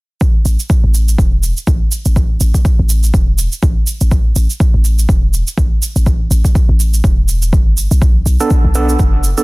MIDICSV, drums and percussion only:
0, 0, Header, 1, 2, 480
1, 0, Start_track
1, 0, Tempo, 487805
1, 210, Time_signature, 4, 2, 24, 8
1, 9285, End_track
2, 0, Start_track
2, 0, Title_t, "Drums"
2, 207, Note_on_c, 9, 36, 105
2, 210, Note_on_c, 9, 69, 33
2, 305, Note_off_c, 9, 36, 0
2, 308, Note_off_c, 9, 69, 0
2, 450, Note_on_c, 9, 69, 79
2, 548, Note_off_c, 9, 69, 0
2, 586, Note_on_c, 9, 69, 46
2, 684, Note_off_c, 9, 69, 0
2, 687, Note_on_c, 9, 36, 103
2, 688, Note_on_c, 9, 69, 34
2, 785, Note_off_c, 9, 36, 0
2, 786, Note_off_c, 9, 69, 0
2, 929, Note_on_c, 9, 69, 80
2, 1028, Note_off_c, 9, 69, 0
2, 1067, Note_on_c, 9, 69, 47
2, 1165, Note_on_c, 9, 36, 98
2, 1166, Note_off_c, 9, 69, 0
2, 1172, Note_on_c, 9, 69, 35
2, 1264, Note_off_c, 9, 36, 0
2, 1270, Note_off_c, 9, 69, 0
2, 1409, Note_on_c, 9, 69, 81
2, 1508, Note_off_c, 9, 69, 0
2, 1544, Note_on_c, 9, 69, 45
2, 1643, Note_off_c, 9, 69, 0
2, 1646, Note_on_c, 9, 36, 105
2, 1648, Note_on_c, 9, 69, 35
2, 1744, Note_off_c, 9, 36, 0
2, 1746, Note_off_c, 9, 69, 0
2, 1886, Note_on_c, 9, 69, 78
2, 1985, Note_off_c, 9, 69, 0
2, 2023, Note_on_c, 9, 69, 46
2, 2121, Note_off_c, 9, 69, 0
2, 2127, Note_on_c, 9, 36, 108
2, 2127, Note_on_c, 9, 69, 36
2, 2225, Note_off_c, 9, 36, 0
2, 2225, Note_off_c, 9, 69, 0
2, 2367, Note_on_c, 9, 69, 85
2, 2466, Note_off_c, 9, 69, 0
2, 2503, Note_on_c, 9, 36, 56
2, 2506, Note_on_c, 9, 69, 48
2, 2602, Note_off_c, 9, 36, 0
2, 2604, Note_off_c, 9, 69, 0
2, 2607, Note_on_c, 9, 36, 114
2, 2610, Note_on_c, 9, 69, 37
2, 2706, Note_off_c, 9, 36, 0
2, 2709, Note_off_c, 9, 69, 0
2, 2848, Note_on_c, 9, 69, 88
2, 2946, Note_off_c, 9, 69, 0
2, 2986, Note_on_c, 9, 69, 48
2, 3084, Note_off_c, 9, 69, 0
2, 3087, Note_on_c, 9, 36, 108
2, 3092, Note_on_c, 9, 69, 37
2, 3186, Note_off_c, 9, 36, 0
2, 3190, Note_off_c, 9, 69, 0
2, 3329, Note_on_c, 9, 69, 88
2, 3427, Note_off_c, 9, 69, 0
2, 3466, Note_on_c, 9, 69, 47
2, 3564, Note_off_c, 9, 69, 0
2, 3568, Note_on_c, 9, 36, 111
2, 3569, Note_on_c, 9, 69, 37
2, 3666, Note_off_c, 9, 36, 0
2, 3668, Note_off_c, 9, 69, 0
2, 3807, Note_on_c, 9, 69, 85
2, 3905, Note_off_c, 9, 69, 0
2, 3946, Note_on_c, 9, 69, 49
2, 4044, Note_off_c, 9, 69, 0
2, 4049, Note_on_c, 9, 36, 109
2, 4049, Note_on_c, 9, 69, 37
2, 4147, Note_off_c, 9, 36, 0
2, 4148, Note_off_c, 9, 69, 0
2, 4288, Note_on_c, 9, 69, 87
2, 4387, Note_off_c, 9, 69, 0
2, 4428, Note_on_c, 9, 69, 48
2, 4527, Note_off_c, 9, 69, 0
2, 4528, Note_on_c, 9, 36, 114
2, 4532, Note_on_c, 9, 69, 36
2, 4627, Note_off_c, 9, 36, 0
2, 4630, Note_off_c, 9, 69, 0
2, 4770, Note_on_c, 9, 69, 88
2, 4868, Note_off_c, 9, 69, 0
2, 4907, Note_on_c, 9, 69, 49
2, 5006, Note_off_c, 9, 69, 0
2, 5007, Note_on_c, 9, 36, 110
2, 5011, Note_on_c, 9, 69, 37
2, 5105, Note_off_c, 9, 36, 0
2, 5109, Note_off_c, 9, 69, 0
2, 5250, Note_on_c, 9, 69, 84
2, 5348, Note_off_c, 9, 69, 0
2, 5387, Note_on_c, 9, 69, 49
2, 5485, Note_off_c, 9, 69, 0
2, 5486, Note_on_c, 9, 36, 112
2, 5490, Note_on_c, 9, 69, 38
2, 5585, Note_off_c, 9, 36, 0
2, 5589, Note_off_c, 9, 69, 0
2, 5732, Note_on_c, 9, 69, 86
2, 5830, Note_off_c, 9, 69, 0
2, 5866, Note_on_c, 9, 69, 48
2, 5964, Note_off_c, 9, 69, 0
2, 5967, Note_on_c, 9, 36, 110
2, 5969, Note_on_c, 9, 69, 36
2, 6065, Note_off_c, 9, 36, 0
2, 6067, Note_off_c, 9, 69, 0
2, 6211, Note_on_c, 9, 69, 86
2, 6310, Note_off_c, 9, 69, 0
2, 6343, Note_on_c, 9, 36, 59
2, 6347, Note_on_c, 9, 69, 50
2, 6442, Note_off_c, 9, 36, 0
2, 6445, Note_off_c, 9, 69, 0
2, 6448, Note_on_c, 9, 36, 112
2, 6451, Note_on_c, 9, 69, 36
2, 6546, Note_off_c, 9, 36, 0
2, 6549, Note_off_c, 9, 69, 0
2, 6691, Note_on_c, 9, 69, 85
2, 6789, Note_off_c, 9, 69, 0
2, 6827, Note_on_c, 9, 69, 49
2, 6925, Note_off_c, 9, 69, 0
2, 6927, Note_on_c, 9, 36, 105
2, 6931, Note_on_c, 9, 69, 37
2, 7025, Note_off_c, 9, 36, 0
2, 7029, Note_off_c, 9, 69, 0
2, 7168, Note_on_c, 9, 69, 83
2, 7266, Note_off_c, 9, 69, 0
2, 7304, Note_on_c, 9, 69, 48
2, 7403, Note_off_c, 9, 69, 0
2, 7407, Note_on_c, 9, 36, 112
2, 7410, Note_on_c, 9, 69, 36
2, 7506, Note_off_c, 9, 36, 0
2, 7509, Note_off_c, 9, 69, 0
2, 7649, Note_on_c, 9, 69, 86
2, 7747, Note_off_c, 9, 69, 0
2, 7786, Note_on_c, 9, 69, 49
2, 7885, Note_off_c, 9, 69, 0
2, 7888, Note_on_c, 9, 36, 106
2, 7891, Note_on_c, 9, 69, 35
2, 7987, Note_off_c, 9, 36, 0
2, 7990, Note_off_c, 9, 69, 0
2, 8132, Note_on_c, 9, 69, 85
2, 8230, Note_off_c, 9, 69, 0
2, 8267, Note_on_c, 9, 69, 48
2, 8365, Note_off_c, 9, 69, 0
2, 8367, Note_on_c, 9, 69, 34
2, 8370, Note_on_c, 9, 36, 106
2, 8466, Note_off_c, 9, 69, 0
2, 8468, Note_off_c, 9, 36, 0
2, 8609, Note_on_c, 9, 69, 85
2, 8707, Note_off_c, 9, 69, 0
2, 8748, Note_on_c, 9, 69, 47
2, 8846, Note_off_c, 9, 69, 0
2, 8850, Note_on_c, 9, 36, 101
2, 8850, Note_on_c, 9, 69, 36
2, 8948, Note_off_c, 9, 36, 0
2, 8949, Note_off_c, 9, 69, 0
2, 9090, Note_on_c, 9, 69, 84
2, 9189, Note_off_c, 9, 69, 0
2, 9226, Note_on_c, 9, 69, 47
2, 9285, Note_off_c, 9, 69, 0
2, 9285, End_track
0, 0, End_of_file